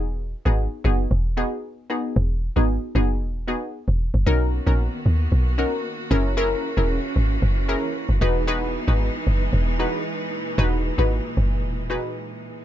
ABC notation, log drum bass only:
X:1
M:4/4
L:1/16
Q:1/4=114
K:Elyd
V:1 name="Log drum bass" clef=bass
E,,,3 G,,,2 z F,,,2 E,,,3 z4 z | E,,,3 G,,,2 z F,,,2 E,,,3 z2 E,,,2 F,,, | B,,,3 A,,,2 z D,,2 B,,,3 z3 F,,,2- | F,,,2 z E,,,2 z G,,,2 F,,,3 z2 F,,, E,,,2- |
E,,,3 G,,,2 z F,,,2 E,,,3 z4 z | E,,,3 G,,,2 z F,,,2 E,,,3 z4 z |]